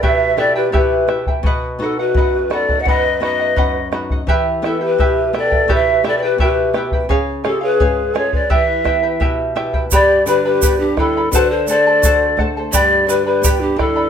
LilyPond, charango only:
\new Staff \with { instrumentName = "Charango" } { \time 2/4 \key e \minor \tempo 4 = 85 <e' g' b' e'' g''>8 <e' b' e'' g''>16 <e' b' g''>16 <e' g' b' e'' g''>8 <e' b' e'' g''>16 <e' b' g''>16 | <b' dis'' fis''>8 <b' dis'' fis''>16 <dis'' fis''>16 <b' dis'' fis''>8 <b' dis'' fis''>16 <dis'' fis''>16 | <b' dis'' fis''>8 <b' dis'' fis''>16 <dis'' fis''>16 <b' dis'' fis''>8 <b' dis'' fis''>16 <dis'' fis''>16 | <e' g' b' e'' g''>8 <e' b' e'' g''>16 <e' b' g''>16 <e' g' b' e'' g''>8 <e' b' e'' g''>16 <e' b' g''>16 |
<e' g' b' e'' g''>8 <e' b' e'' g''>16 <e' b' g''>16 <e' g' b' e'' g''>8 <e' b' e'' g''>16 <e' b' g''>16 | <gis' cis'' eis''>8 <gis' cis'' eis''>16 <cis'' eis''>16 <gis' cis'' eis''>8 <gis' cis'' eis''>16 <cis'' eis''>16 | <e' g' b' e'' g''>8 <e' b' e'' g''>16 <e' b' g''>16 <e' g' b' e'' g''>8 <e' b' e'' g''>16 <e' b' g''>16 | \key g \major <g' b' d'' g'' b''>8 <b' d'' g'' b''>16 <b' d'' b''>16 <g' b' d'' g'' b''>8 <b' d'' g'' b''>16 <b' d'' b''>16 |
<a' c'' d'' fis'' a''>8 <a' c'' fis'' a''>16 <a' c'' a''>16 <a' c'' d'' fis'' a''>8 <a' c'' fis'' a''>16 <a' c'' a''>16 | <g' b' d'' g'' b''>8 <b' d'' g'' b''>16 <b' d'' b''>16 <g' b' d'' g'' b''>8 <b' d'' g'' b''>16 <b' d'' b''>16 | }